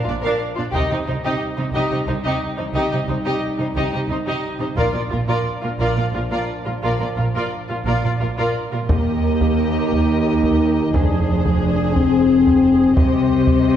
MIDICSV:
0, 0, Header, 1, 8, 480
1, 0, Start_track
1, 0, Key_signature, -3, "minor"
1, 0, Tempo, 671141
1, 534, Time_signature, 6, 3, 24, 8
1, 3415, Tempo, 687285
1, 7255, Tempo, 673401
1, 9744, End_track
2, 0, Start_track
2, 0, Title_t, "Violin section"
2, 0, Program_c, 0, 48
2, 57, Note_on_c, 0, 74, 41
2, 104, Note_off_c, 0, 74, 0
2, 166, Note_on_c, 0, 77, 50
2, 282, Note_off_c, 0, 77, 0
2, 414, Note_on_c, 0, 74, 38
2, 462, Note_off_c, 0, 74, 0
2, 530, Note_on_c, 0, 75, 56
2, 641, Note_off_c, 0, 75, 0
2, 649, Note_on_c, 0, 75, 39
2, 698, Note_off_c, 0, 75, 0
2, 770, Note_on_c, 0, 72, 42
2, 818, Note_off_c, 0, 72, 0
2, 886, Note_on_c, 0, 75, 57
2, 999, Note_off_c, 0, 75, 0
2, 1120, Note_on_c, 0, 72, 38
2, 1170, Note_off_c, 0, 72, 0
2, 1240, Note_on_c, 0, 75, 52
2, 1351, Note_off_c, 0, 75, 0
2, 1359, Note_on_c, 0, 75, 47
2, 1410, Note_off_c, 0, 75, 0
2, 1479, Note_on_c, 0, 72, 36
2, 1530, Note_off_c, 0, 72, 0
2, 1598, Note_on_c, 0, 75, 47
2, 1715, Note_off_c, 0, 75, 0
2, 1840, Note_on_c, 0, 72, 37
2, 1890, Note_off_c, 0, 72, 0
2, 1958, Note_on_c, 0, 75, 56
2, 2067, Note_off_c, 0, 75, 0
2, 2076, Note_on_c, 0, 75, 37
2, 2127, Note_off_c, 0, 75, 0
2, 2203, Note_on_c, 0, 72, 35
2, 2253, Note_off_c, 0, 72, 0
2, 2320, Note_on_c, 0, 75, 62
2, 2437, Note_off_c, 0, 75, 0
2, 2569, Note_on_c, 0, 72, 40
2, 2618, Note_off_c, 0, 72, 0
2, 2693, Note_on_c, 0, 75, 49
2, 2805, Note_off_c, 0, 75, 0
2, 2814, Note_on_c, 0, 75, 38
2, 2862, Note_off_c, 0, 75, 0
2, 2943, Note_on_c, 0, 72, 38
2, 2989, Note_off_c, 0, 72, 0
2, 3059, Note_on_c, 0, 75, 50
2, 3169, Note_off_c, 0, 75, 0
2, 3295, Note_on_c, 0, 72, 39
2, 3344, Note_off_c, 0, 72, 0
2, 3417, Note_on_c, 0, 74, 44
2, 3520, Note_off_c, 0, 74, 0
2, 3529, Note_on_c, 0, 74, 32
2, 3577, Note_off_c, 0, 74, 0
2, 3652, Note_on_c, 0, 70, 39
2, 3700, Note_off_c, 0, 70, 0
2, 3768, Note_on_c, 0, 74, 50
2, 3880, Note_off_c, 0, 74, 0
2, 4013, Note_on_c, 0, 70, 33
2, 4059, Note_off_c, 0, 70, 0
2, 4129, Note_on_c, 0, 74, 49
2, 4240, Note_off_c, 0, 74, 0
2, 4252, Note_on_c, 0, 74, 40
2, 4299, Note_off_c, 0, 74, 0
2, 4381, Note_on_c, 0, 70, 31
2, 4426, Note_off_c, 0, 70, 0
2, 4493, Note_on_c, 0, 74, 43
2, 4602, Note_off_c, 0, 74, 0
2, 4727, Note_on_c, 0, 70, 28
2, 4775, Note_off_c, 0, 70, 0
2, 4852, Note_on_c, 0, 74, 38
2, 4962, Note_off_c, 0, 74, 0
2, 4975, Note_on_c, 0, 74, 25
2, 5022, Note_off_c, 0, 74, 0
2, 5098, Note_on_c, 0, 70, 33
2, 5144, Note_off_c, 0, 70, 0
2, 5217, Note_on_c, 0, 74, 42
2, 5326, Note_off_c, 0, 74, 0
2, 5455, Note_on_c, 0, 70, 26
2, 5503, Note_off_c, 0, 70, 0
2, 5574, Note_on_c, 0, 74, 41
2, 5685, Note_off_c, 0, 74, 0
2, 5694, Note_on_c, 0, 74, 38
2, 5742, Note_off_c, 0, 74, 0
2, 5814, Note_on_c, 0, 70, 32
2, 5862, Note_off_c, 0, 70, 0
2, 5929, Note_on_c, 0, 74, 36
2, 6043, Note_off_c, 0, 74, 0
2, 6168, Note_on_c, 0, 70, 31
2, 6217, Note_off_c, 0, 70, 0
2, 6293, Note_on_c, 0, 75, 44
2, 7707, Note_off_c, 0, 75, 0
2, 7738, Note_on_c, 0, 72, 46
2, 9148, Note_off_c, 0, 72, 0
2, 9174, Note_on_c, 0, 75, 48
2, 9744, Note_off_c, 0, 75, 0
2, 9744, End_track
3, 0, Start_track
3, 0, Title_t, "Violin section"
3, 0, Program_c, 1, 48
3, 27, Note_on_c, 1, 65, 41
3, 80, Note_off_c, 1, 65, 0
3, 149, Note_on_c, 1, 70, 53
3, 272, Note_off_c, 1, 70, 0
3, 394, Note_on_c, 1, 65, 45
3, 446, Note_off_c, 1, 65, 0
3, 506, Note_on_c, 1, 67, 53
3, 626, Note_off_c, 1, 67, 0
3, 635, Note_on_c, 1, 67, 38
3, 686, Note_off_c, 1, 67, 0
3, 755, Note_on_c, 1, 63, 37
3, 806, Note_off_c, 1, 63, 0
3, 883, Note_on_c, 1, 67, 54
3, 998, Note_off_c, 1, 67, 0
3, 1126, Note_on_c, 1, 63, 39
3, 1174, Note_off_c, 1, 63, 0
3, 1244, Note_on_c, 1, 67, 52
3, 1354, Note_off_c, 1, 67, 0
3, 1362, Note_on_c, 1, 67, 35
3, 1412, Note_off_c, 1, 67, 0
3, 1486, Note_on_c, 1, 63, 38
3, 1535, Note_off_c, 1, 63, 0
3, 1612, Note_on_c, 1, 67, 54
3, 1723, Note_off_c, 1, 67, 0
3, 1855, Note_on_c, 1, 63, 38
3, 1902, Note_off_c, 1, 63, 0
3, 1963, Note_on_c, 1, 67, 55
3, 2078, Note_off_c, 1, 67, 0
3, 2098, Note_on_c, 1, 67, 37
3, 2145, Note_off_c, 1, 67, 0
3, 2214, Note_on_c, 1, 63, 34
3, 2262, Note_off_c, 1, 63, 0
3, 2323, Note_on_c, 1, 67, 55
3, 2438, Note_off_c, 1, 67, 0
3, 2576, Note_on_c, 1, 63, 41
3, 2623, Note_off_c, 1, 63, 0
3, 2686, Note_on_c, 1, 67, 46
3, 2801, Note_off_c, 1, 67, 0
3, 2815, Note_on_c, 1, 67, 40
3, 2863, Note_off_c, 1, 67, 0
3, 2929, Note_on_c, 1, 63, 30
3, 2978, Note_off_c, 1, 63, 0
3, 3049, Note_on_c, 1, 67, 47
3, 3163, Note_off_c, 1, 67, 0
3, 3291, Note_on_c, 1, 63, 45
3, 3340, Note_off_c, 1, 63, 0
3, 3414, Note_on_c, 1, 70, 51
3, 3521, Note_off_c, 1, 70, 0
3, 3530, Note_on_c, 1, 70, 35
3, 3578, Note_off_c, 1, 70, 0
3, 3657, Note_on_c, 1, 65, 35
3, 3703, Note_off_c, 1, 65, 0
3, 3769, Note_on_c, 1, 70, 47
3, 3881, Note_off_c, 1, 70, 0
3, 4014, Note_on_c, 1, 65, 39
3, 4061, Note_off_c, 1, 65, 0
3, 4124, Note_on_c, 1, 70, 49
3, 4237, Note_off_c, 1, 70, 0
3, 4251, Note_on_c, 1, 70, 33
3, 4298, Note_off_c, 1, 70, 0
3, 4367, Note_on_c, 1, 65, 32
3, 4415, Note_off_c, 1, 65, 0
3, 4486, Note_on_c, 1, 70, 44
3, 4598, Note_off_c, 1, 70, 0
3, 4726, Note_on_c, 1, 65, 33
3, 4774, Note_off_c, 1, 65, 0
3, 4852, Note_on_c, 1, 70, 46
3, 4959, Note_off_c, 1, 70, 0
3, 4968, Note_on_c, 1, 70, 34
3, 5016, Note_off_c, 1, 70, 0
3, 5086, Note_on_c, 1, 65, 32
3, 5135, Note_off_c, 1, 65, 0
3, 5206, Note_on_c, 1, 70, 40
3, 5320, Note_off_c, 1, 70, 0
3, 5446, Note_on_c, 1, 65, 32
3, 5495, Note_off_c, 1, 65, 0
3, 5564, Note_on_c, 1, 70, 40
3, 5680, Note_off_c, 1, 70, 0
3, 5689, Note_on_c, 1, 70, 31
3, 5737, Note_off_c, 1, 70, 0
3, 5811, Note_on_c, 1, 65, 30
3, 5859, Note_off_c, 1, 65, 0
3, 5932, Note_on_c, 1, 70, 47
3, 6045, Note_off_c, 1, 70, 0
3, 6173, Note_on_c, 1, 65, 33
3, 6221, Note_off_c, 1, 65, 0
3, 6297, Note_on_c, 1, 70, 44
3, 7709, Note_off_c, 1, 70, 0
3, 7738, Note_on_c, 1, 68, 48
3, 9148, Note_off_c, 1, 68, 0
3, 9178, Note_on_c, 1, 72, 55
3, 9744, Note_off_c, 1, 72, 0
3, 9744, End_track
4, 0, Start_track
4, 0, Title_t, "Viola section"
4, 0, Program_c, 2, 48
4, 62, Note_on_c, 2, 62, 45
4, 108, Note_off_c, 2, 62, 0
4, 184, Note_on_c, 2, 62, 54
4, 291, Note_off_c, 2, 62, 0
4, 418, Note_on_c, 2, 62, 45
4, 465, Note_off_c, 2, 62, 0
4, 532, Note_on_c, 2, 63, 59
4, 643, Note_off_c, 2, 63, 0
4, 662, Note_on_c, 2, 63, 41
4, 708, Note_off_c, 2, 63, 0
4, 775, Note_on_c, 2, 63, 42
4, 822, Note_off_c, 2, 63, 0
4, 892, Note_on_c, 2, 63, 57
4, 1002, Note_off_c, 2, 63, 0
4, 1128, Note_on_c, 2, 63, 43
4, 1177, Note_off_c, 2, 63, 0
4, 1247, Note_on_c, 2, 63, 47
4, 1360, Note_off_c, 2, 63, 0
4, 1369, Note_on_c, 2, 63, 46
4, 1417, Note_off_c, 2, 63, 0
4, 1492, Note_on_c, 2, 63, 44
4, 1540, Note_off_c, 2, 63, 0
4, 1608, Note_on_c, 2, 63, 54
4, 1721, Note_off_c, 2, 63, 0
4, 1845, Note_on_c, 2, 63, 44
4, 1894, Note_off_c, 2, 63, 0
4, 1967, Note_on_c, 2, 63, 48
4, 2078, Note_off_c, 2, 63, 0
4, 2086, Note_on_c, 2, 63, 35
4, 2135, Note_off_c, 2, 63, 0
4, 2209, Note_on_c, 2, 63, 38
4, 2258, Note_off_c, 2, 63, 0
4, 2325, Note_on_c, 2, 63, 45
4, 2440, Note_off_c, 2, 63, 0
4, 2558, Note_on_c, 2, 63, 34
4, 2609, Note_off_c, 2, 63, 0
4, 2688, Note_on_c, 2, 63, 45
4, 2797, Note_off_c, 2, 63, 0
4, 2806, Note_on_c, 2, 63, 37
4, 2855, Note_off_c, 2, 63, 0
4, 2927, Note_on_c, 2, 63, 34
4, 2976, Note_off_c, 2, 63, 0
4, 3045, Note_on_c, 2, 63, 52
4, 3161, Note_off_c, 2, 63, 0
4, 3289, Note_on_c, 2, 63, 39
4, 3338, Note_off_c, 2, 63, 0
4, 3411, Note_on_c, 2, 65, 50
4, 3523, Note_off_c, 2, 65, 0
4, 3530, Note_on_c, 2, 65, 37
4, 3578, Note_off_c, 2, 65, 0
4, 3644, Note_on_c, 2, 65, 33
4, 3693, Note_off_c, 2, 65, 0
4, 3768, Note_on_c, 2, 65, 43
4, 3880, Note_off_c, 2, 65, 0
4, 4005, Note_on_c, 2, 65, 33
4, 4054, Note_off_c, 2, 65, 0
4, 4125, Note_on_c, 2, 65, 47
4, 4237, Note_off_c, 2, 65, 0
4, 4244, Note_on_c, 2, 65, 36
4, 4293, Note_off_c, 2, 65, 0
4, 4368, Note_on_c, 2, 65, 34
4, 4415, Note_off_c, 2, 65, 0
4, 4484, Note_on_c, 2, 65, 43
4, 4597, Note_off_c, 2, 65, 0
4, 4728, Note_on_c, 2, 65, 36
4, 4776, Note_off_c, 2, 65, 0
4, 4848, Note_on_c, 2, 65, 40
4, 4960, Note_off_c, 2, 65, 0
4, 4968, Note_on_c, 2, 65, 31
4, 5017, Note_off_c, 2, 65, 0
4, 5089, Note_on_c, 2, 65, 30
4, 5138, Note_off_c, 2, 65, 0
4, 5214, Note_on_c, 2, 65, 43
4, 5325, Note_off_c, 2, 65, 0
4, 5449, Note_on_c, 2, 65, 35
4, 5498, Note_off_c, 2, 65, 0
4, 5567, Note_on_c, 2, 65, 36
4, 5681, Note_off_c, 2, 65, 0
4, 5690, Note_on_c, 2, 65, 33
4, 5738, Note_off_c, 2, 65, 0
4, 5806, Note_on_c, 2, 65, 35
4, 5855, Note_off_c, 2, 65, 0
4, 5924, Note_on_c, 2, 65, 39
4, 6040, Note_off_c, 2, 65, 0
4, 6171, Note_on_c, 2, 65, 36
4, 6220, Note_off_c, 2, 65, 0
4, 6288, Note_on_c, 2, 67, 47
4, 7704, Note_off_c, 2, 67, 0
4, 7733, Note_on_c, 2, 68, 50
4, 9146, Note_off_c, 2, 68, 0
4, 9179, Note_on_c, 2, 67, 51
4, 9744, Note_off_c, 2, 67, 0
4, 9744, End_track
5, 0, Start_track
5, 0, Title_t, "French horn section"
5, 0, Program_c, 3, 60
5, 0, Note_on_c, 3, 53, 53
5, 0, Note_on_c, 3, 62, 54
5, 400, Note_off_c, 3, 53, 0
5, 400, Note_off_c, 3, 62, 0
5, 521, Note_on_c, 3, 63, 51
5, 522, Note_on_c, 3, 55, 56
5, 3381, Note_off_c, 3, 55, 0
5, 3381, Note_off_c, 3, 63, 0
5, 3418, Note_on_c, 3, 62, 50
5, 3420, Note_on_c, 3, 53, 55
5, 6040, Note_off_c, 3, 62, 0
5, 6042, Note_off_c, 3, 53, 0
5, 6296, Note_on_c, 3, 58, 59
5, 6990, Note_off_c, 3, 58, 0
5, 7012, Note_on_c, 3, 63, 63
5, 7718, Note_off_c, 3, 63, 0
5, 7740, Note_on_c, 3, 62, 65
5, 8450, Note_on_c, 3, 60, 74
5, 8456, Note_off_c, 3, 62, 0
5, 9157, Note_off_c, 3, 60, 0
5, 9165, Note_on_c, 3, 60, 68
5, 9744, Note_off_c, 3, 60, 0
5, 9744, End_track
6, 0, Start_track
6, 0, Title_t, "Cello section"
6, 0, Program_c, 4, 48
6, 56, Note_on_c, 4, 46, 38
6, 104, Note_off_c, 4, 46, 0
6, 176, Note_on_c, 4, 46, 51
6, 224, Note_off_c, 4, 46, 0
6, 416, Note_on_c, 4, 46, 37
6, 463, Note_off_c, 4, 46, 0
6, 535, Note_on_c, 4, 48, 53
6, 583, Note_off_c, 4, 48, 0
6, 654, Note_on_c, 4, 48, 40
6, 702, Note_off_c, 4, 48, 0
6, 775, Note_on_c, 4, 48, 39
6, 822, Note_off_c, 4, 48, 0
6, 894, Note_on_c, 4, 48, 58
6, 941, Note_off_c, 4, 48, 0
6, 1134, Note_on_c, 4, 48, 42
6, 1181, Note_off_c, 4, 48, 0
6, 1258, Note_on_c, 4, 48, 50
6, 1304, Note_off_c, 4, 48, 0
6, 1372, Note_on_c, 4, 48, 39
6, 1419, Note_off_c, 4, 48, 0
6, 1495, Note_on_c, 4, 48, 35
6, 1542, Note_off_c, 4, 48, 0
6, 1611, Note_on_c, 4, 48, 54
6, 1659, Note_off_c, 4, 48, 0
6, 1851, Note_on_c, 4, 48, 38
6, 1899, Note_off_c, 4, 48, 0
6, 1977, Note_on_c, 4, 48, 49
6, 2023, Note_off_c, 4, 48, 0
6, 2093, Note_on_c, 4, 48, 39
6, 2141, Note_off_c, 4, 48, 0
6, 2210, Note_on_c, 4, 48, 38
6, 2258, Note_off_c, 4, 48, 0
6, 2329, Note_on_c, 4, 48, 54
6, 2377, Note_off_c, 4, 48, 0
6, 2567, Note_on_c, 4, 48, 39
6, 2616, Note_off_c, 4, 48, 0
6, 2688, Note_on_c, 4, 48, 52
6, 2737, Note_off_c, 4, 48, 0
6, 2811, Note_on_c, 4, 48, 36
6, 2859, Note_off_c, 4, 48, 0
6, 2928, Note_on_c, 4, 48, 34
6, 2977, Note_off_c, 4, 48, 0
6, 3051, Note_on_c, 4, 48, 49
6, 3099, Note_off_c, 4, 48, 0
6, 3294, Note_on_c, 4, 48, 37
6, 3343, Note_off_c, 4, 48, 0
6, 3413, Note_on_c, 4, 46, 53
6, 3461, Note_off_c, 4, 46, 0
6, 3531, Note_on_c, 4, 46, 35
6, 3579, Note_off_c, 4, 46, 0
6, 3654, Note_on_c, 4, 46, 35
6, 3701, Note_off_c, 4, 46, 0
6, 3766, Note_on_c, 4, 46, 47
6, 3814, Note_off_c, 4, 46, 0
6, 4014, Note_on_c, 4, 46, 36
6, 4060, Note_off_c, 4, 46, 0
6, 4131, Note_on_c, 4, 46, 47
6, 4178, Note_off_c, 4, 46, 0
6, 4247, Note_on_c, 4, 46, 33
6, 4295, Note_off_c, 4, 46, 0
6, 4366, Note_on_c, 4, 46, 34
6, 4414, Note_off_c, 4, 46, 0
6, 4490, Note_on_c, 4, 46, 47
6, 4537, Note_off_c, 4, 46, 0
6, 4733, Note_on_c, 4, 46, 27
6, 4780, Note_off_c, 4, 46, 0
6, 4850, Note_on_c, 4, 46, 42
6, 4898, Note_off_c, 4, 46, 0
6, 4970, Note_on_c, 4, 46, 31
6, 5018, Note_off_c, 4, 46, 0
6, 5091, Note_on_c, 4, 46, 30
6, 5139, Note_off_c, 4, 46, 0
6, 5215, Note_on_c, 4, 46, 43
6, 5262, Note_off_c, 4, 46, 0
6, 5455, Note_on_c, 4, 46, 31
6, 5503, Note_off_c, 4, 46, 0
6, 5574, Note_on_c, 4, 46, 43
6, 5622, Note_off_c, 4, 46, 0
6, 5696, Note_on_c, 4, 46, 29
6, 5743, Note_off_c, 4, 46, 0
6, 5821, Note_on_c, 4, 46, 28
6, 5867, Note_off_c, 4, 46, 0
6, 5939, Note_on_c, 4, 46, 38
6, 5986, Note_off_c, 4, 46, 0
6, 6178, Note_on_c, 4, 46, 31
6, 6225, Note_off_c, 4, 46, 0
6, 6293, Note_on_c, 4, 39, 43
6, 7707, Note_off_c, 4, 39, 0
6, 7735, Note_on_c, 4, 41, 46
6, 9146, Note_off_c, 4, 41, 0
6, 9173, Note_on_c, 4, 48, 51
6, 9744, Note_off_c, 4, 48, 0
6, 9744, End_track
7, 0, Start_track
7, 0, Title_t, "Double bass section"
7, 0, Program_c, 5, 48
7, 51, Note_on_c, 5, 34, 42
7, 99, Note_off_c, 5, 34, 0
7, 528, Note_on_c, 5, 36, 56
7, 577, Note_off_c, 5, 36, 0
7, 769, Note_on_c, 5, 36, 38
7, 817, Note_off_c, 5, 36, 0
7, 1241, Note_on_c, 5, 36, 55
7, 1291, Note_off_c, 5, 36, 0
7, 1480, Note_on_c, 5, 36, 42
7, 1530, Note_off_c, 5, 36, 0
7, 1959, Note_on_c, 5, 36, 58
7, 2009, Note_off_c, 5, 36, 0
7, 2201, Note_on_c, 5, 36, 38
7, 2251, Note_off_c, 5, 36, 0
7, 2683, Note_on_c, 5, 36, 51
7, 2733, Note_off_c, 5, 36, 0
7, 2926, Note_on_c, 5, 36, 39
7, 2975, Note_off_c, 5, 36, 0
7, 3412, Note_on_c, 5, 34, 52
7, 3460, Note_off_c, 5, 34, 0
7, 3649, Note_on_c, 5, 34, 37
7, 3698, Note_off_c, 5, 34, 0
7, 4127, Note_on_c, 5, 34, 50
7, 4175, Note_off_c, 5, 34, 0
7, 4364, Note_on_c, 5, 34, 36
7, 4413, Note_off_c, 5, 34, 0
7, 4846, Note_on_c, 5, 34, 46
7, 4895, Note_off_c, 5, 34, 0
7, 5089, Note_on_c, 5, 34, 30
7, 5138, Note_off_c, 5, 34, 0
7, 5569, Note_on_c, 5, 34, 45
7, 5618, Note_off_c, 5, 34, 0
7, 5816, Note_on_c, 5, 34, 34
7, 5864, Note_off_c, 5, 34, 0
7, 6289, Note_on_c, 5, 39, 50
7, 7705, Note_off_c, 5, 39, 0
7, 7733, Note_on_c, 5, 29, 50
7, 9145, Note_off_c, 5, 29, 0
7, 9176, Note_on_c, 5, 36, 47
7, 9744, Note_off_c, 5, 36, 0
7, 9744, End_track
8, 0, Start_track
8, 0, Title_t, "Taiko and cinematic ensemble drums"
8, 534, Note_on_c, 9, 41, 51
8, 606, Note_off_c, 9, 41, 0
8, 1610, Note_on_c, 9, 41, 29
8, 1682, Note_off_c, 9, 41, 0
8, 3417, Note_on_c, 9, 41, 50
8, 3487, Note_off_c, 9, 41, 0
8, 6291, Note_on_c, 9, 41, 83
8, 6361, Note_off_c, 9, 41, 0
8, 6652, Note_on_c, 9, 41, 62
8, 6722, Note_off_c, 9, 41, 0
8, 7013, Note_on_c, 9, 41, 54
8, 7083, Note_off_c, 9, 41, 0
8, 7371, Note_on_c, 9, 41, 58
8, 7442, Note_off_c, 9, 41, 0
8, 7735, Note_on_c, 9, 41, 78
8, 7806, Note_off_c, 9, 41, 0
8, 8098, Note_on_c, 9, 41, 60
8, 8169, Note_off_c, 9, 41, 0
8, 8457, Note_on_c, 9, 41, 60
8, 8528, Note_off_c, 9, 41, 0
8, 8819, Note_on_c, 9, 41, 62
8, 8890, Note_off_c, 9, 41, 0
8, 9176, Note_on_c, 9, 41, 80
8, 9247, Note_off_c, 9, 41, 0
8, 9535, Note_on_c, 9, 41, 61
8, 9606, Note_off_c, 9, 41, 0
8, 9744, End_track
0, 0, End_of_file